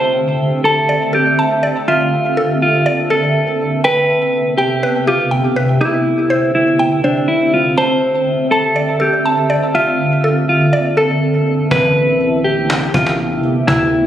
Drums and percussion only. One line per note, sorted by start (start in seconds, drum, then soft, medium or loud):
11.71 cajon bass loud
12.21 cajon slap soft
12.70 cajon slap loud
12.94 cajon bass loud
13.07 cajon slap medium
13.19 cajon slap soft
13.43 cajon slap soft
13.56 cajon slap soft
13.68 cajon bass loud